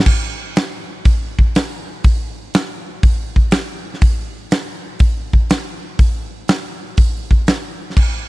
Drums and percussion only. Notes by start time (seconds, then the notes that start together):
0.06 kick, crash
0.56 snare, open hi-hat
1.05 kick, open hi-hat
1.39 kick
1.55 snare, open hi-hat
2.04 kick, open hi-hat
2.54 snare, open hi-hat
3.03 kick, open hi-hat
3.36 kick
3.51 snare, open hi-hat
3.94 snare
4.01 kick, open hi-hat
4.51 snare, open hi-hat
4.99 kick, open hi-hat
5.33 kick
5.50 snare, open hi-hat
5.99 kick, open hi-hat
6.48 snare, open hi-hat
6.97 kick, open hi-hat
7.31 kick
7.47 snare, open hi-hat
7.90 snare
7.97 kick, crash